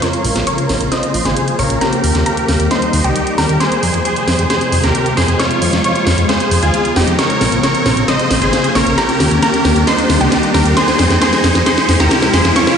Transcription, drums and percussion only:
0.02 snare soft
0.02 closed hi-hat medium
0.13 closed hi-hat soft
0.25 open hi-hat loud
0.36 snare soft
0.36 closed hi-hat medium
0.47 closed hi-hat medium
0.58 closed hi-hat soft
0.69 snare soft
0.69 open hi-hat medium
0.81 closed hi-hat medium
0.92 snare soft
0.92 closed hi-hat medium
1.03 closed hi-hat medium
1.14 open hi-hat medium
1.25 snare soft
1.25 closed hi-hat medium
1.37 closed hi-hat medium
1.48 closed hi-hat soft
1.59 open hi-hat medium
1.70 closed hi-hat medium
1.81 snare soft
1.81 closed hi-hat medium
1.93 closed hi-hat soft
2.04 open hi-hat loud
2.15 snare soft
2.15 closed hi-hat medium
2.26 closed hi-hat medium
2.37 closed hi-hat soft
2.48 snare medium
2.48 open hi-hat medium
2.60 closed hi-hat medium
2.71 snare medium
2.71 closed hi-hat medium
2.82 closed hi-hat soft
2.93 open hi-hat loud
3.04 closed hi-hat medium
3.16 closed hi-hat medium
3.27 closed hi-hat soft
3.38 snare medium
3.38 open hi-hat medium
3.49 closed hi-hat medium
3.61 snare medium
3.61 closed hi-hat medium
3.72 closed hi-hat soft
3.83 open hi-hat loud
3.94 closed hi-hat soft
4.05 closed hi-hat medium
4.16 closed hi-hat soft
4.28 snare medium
4.28 open hi-hat medium
4.39 closed hi-hat soft
4.50 snare medium
4.50 closed hi-hat medium
4.61 closed hi-hat soft
4.72 open hi-hat loud
4.84 snare medium
4.84 closed hi-hat medium
4.95 closed hi-hat medium
5.06 closed hi-hat soft
5.17 snare medium
5.17 open hi-hat medium
5.28 closed hi-hat soft
5.40 snare medium
5.40 closed hi-hat medium
5.51 closed hi-hat soft
5.62 open hi-hat loud
5.73 snare medium
5.73 closed hi-hat soft
5.84 closed hi-hat medium
5.96 closed hi-hat soft
6.07 snare medium
6.07 open hi-hat medium
6.18 closed hi-hat soft
6.29 snare medium
6.29 closed hi-hat medium
6.40 closed hi-hat soft
6.51 open hi-hat loud
6.63 closed hi-hat soft
6.74 closed hi-hat medium
6.85 closed hi-hat soft
6.96 snare medium
6.96 open hi-hat medium
7.08 closed hi-hat soft
7.19 snare medium
7.19 closed hi-hat medium
7.30 closed hi-hat soft
7.41 snare medium
7.41 open hi-hat loud
7.52 closed hi-hat medium
7.63 snare medium
7.63 closed hi-hat medium
7.75 closed hi-hat soft
7.86 snare medium
7.86 open hi-hat medium
7.97 closed hi-hat medium
8.08 snare medium
8.08 closed hi-hat medium
8.19 closed hi-hat soft
8.31 snare medium
8.31 open hi-hat loud
8.42 closed hi-hat soft
8.53 snare medium
8.53 closed hi-hat medium
8.64 closed hi-hat soft
8.75 snare medium
8.75 open hi-hat loud
8.87 closed hi-hat medium
8.98 snare medium
8.98 closed hi-hat medium
9.09 closed hi-hat medium
9.20 snare medium
9.20 open hi-hat loud
9.31 closed hi-hat medium
9.43 snare medium
9.43 closed hi-hat medium
9.54 closed hi-hat medium
9.65 snare medium
9.65 open hi-hat medium
9.76 closed hi-hat medium
9.87 snare medium
9.87 closed hi-hat medium
9.98 closed hi-hat soft
10.10 snare medium
10.10 open hi-hat loud
10.21 closed hi-hat medium
10.32 snare medium
10.32 closed hi-hat medium
10.43 closed hi-hat soft
10.54 snare medium
10.54 open hi-hat medium
10.66 closed hi-hat medium
10.77 snare medium
10.77 closed hi-hat medium
10.88 snare medium
10.88 closed hi-hat soft
10.99 snare loud
10.99 open hi-hat loud
11.10 snare medium
11.10 closed hi-hat medium
11.22 snare loud
11.22 closed hi-hat medium
11.33 snare medium
11.33 closed hi-hat medium
11.44 snare medium
11.44 open hi-hat medium
11.55 snare medium
11.55 closed hi-hat medium
11.66 snare loud
11.66 closed hi-hat medium
11.78 snare medium
11.78 closed hi-hat medium
11.89 snare loud
11.89 open hi-hat loud
12.00 snare medium
12.00 closed hi-hat medium
12.11 snare loud
12.11 closed hi-hat medium
12.22 snare medium
12.22 closed hi-hat medium
12.34 snare loud
12.34 open hi-hat medium
12.45 snare medium
12.45 closed hi-hat medium
12.56 snare loud
12.56 closed hi-hat medium
12.67 snare medium
12.67 closed hi-hat medium

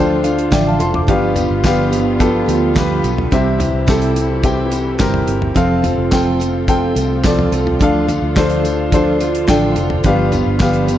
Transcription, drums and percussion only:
0.24 closed hi-hat medium
0.24 tambourine medium
0.39 closed hi-hat soft
0.52 kick loud
0.52 snare loud
0.52 clap medium
0.52 closed hi-hat loud
0.52 tambourine medium
0.80 closed hi-hat medium
0.80 tambourine soft
0.94 floor tom medium
1.08 kick loud
1.08 closed hi-hat medium
1.36 closed hi-hat medium
1.36 floor tom medium
1.36 tambourine medium
1.64 kick loud
1.64 snare medium
1.64 clap medium
1.64 closed hi-hat medium
1.64 tambourine medium
1.92 closed hi-hat medium
1.92 tambourine medium
2.20 kick loud
2.20 closed hi-hat medium
2.20 tambourine soft
2.49 closed hi-hat medium
2.49 tambourine medium
2.76 kick loud
2.76 snare loud
2.76 clap medium
2.76 closed hi-hat medium
2.76 tambourine medium
3.04 closed hi-hat medium
3.04 tambourine soft
3.18 floor tom medium
3.32 kick medium
3.32 closed hi-hat medium
3.32 tambourine soft
3.60 closed hi-hat medium
3.60 floor tom medium
3.60 tambourine soft
3.87 kick loud
3.87 snare medium
3.87 clap medium
3.87 closed hi-hat medium
3.87 tambourine medium
4.02 closed hi-hat medium
4.16 closed hi-hat medium
4.16 tambourine soft
4.43 kick loud
4.43 closed hi-hat medium
4.43 tambourine soft
4.72 closed hi-hat medium
4.72 tambourine medium
4.99 kick loud
4.99 snare loud
4.99 clap medium
4.99 closed hi-hat loud
4.99 tambourine medium
5.14 floor tom medium
5.27 closed hi-hat medium
5.42 floor tom medium
5.55 kick loud
5.55 closed hi-hat medium
5.55 tambourine soft
5.84 closed hi-hat medium
5.84 floor tom medium
5.84 tambourine soft
6.11 kick loud
6.11 snare medium
6.11 clap medium
6.11 closed hi-hat medium
6.11 tambourine medium
6.40 closed hi-hat medium
6.40 tambourine soft
6.68 kick loud
6.68 closed hi-hat medium
6.68 tambourine soft
6.96 closed hi-hat medium
6.96 tambourine medium
7.23 kick loud
7.23 snare loud
7.23 clap medium
7.23 closed hi-hat loud
7.23 tambourine medium
7.39 floor tom medium
7.52 closed hi-hat medium
7.52 tambourine soft
7.67 floor tom medium
7.81 kick loud
7.81 closed hi-hat medium
8.08 closed hi-hat medium
8.08 floor tom medium
8.08 tambourine soft
8.36 kick loud
8.36 snare loud
8.36 clap medium
8.36 closed hi-hat medium
8.36 tambourine medium
8.50 closed hi-hat medium
8.65 closed hi-hat medium
8.65 tambourine medium
8.92 kick loud
8.92 closed hi-hat medium
8.92 tambourine soft
9.20 closed hi-hat medium
9.20 tambourine medium
9.35 closed hi-hat medium
9.48 kick loud
9.48 snare loud
9.48 clap medium
9.48 closed hi-hat loud
9.48 tambourine medium
9.76 closed hi-hat medium
9.76 tambourine soft
9.90 floor tom medium
10.04 kick loud
10.04 closed hi-hat medium
10.04 tambourine soft
10.32 closed hi-hat medium
10.32 floor tom medium
10.32 tambourine soft
10.60 kick loud
10.60 snare loud
10.60 clap medium
10.60 closed hi-hat medium
10.60 tambourine medium
10.73 closed hi-hat medium
10.88 closed hi-hat medium
10.88 tambourine soft

